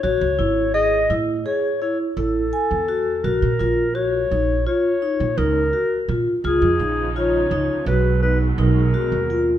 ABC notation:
X:1
M:9/8
L:1/16
Q:3/8=56
K:F#
V:1 name="Clarinet"
c4 d2 z2 c2 c2 =A6 | A4 c4 c4 A4 z2 | G4 c4 B2 B2 A6 |]
V:2 name="Vibraphone"
F2 =E2 G2 E2 G2 E2 E2 g2 F2 | F2 E2 F2 D2 E2 D2 D2 F2 E2 | E2 D2 E2 D2 F2 D2 D2 F2 E2 |]
V:3 name="String section" clef=bass
z16 z2 | z16 z2 | [C,E,D]8 [B,,F,G,]8- [B,,F,G,]2 |]
V:4 name="Upright bass" clef=bass
=A,,, C,, G,,,4 =A,,2 z4 A,,,2 z =E,,3 | A,,, A,, A,,,4 A,,,2 z3 A,, C,,2 z2 A,, z | C,, E,, A,,,4 C,, z B,,,4 B,,,2 z D,,3 |]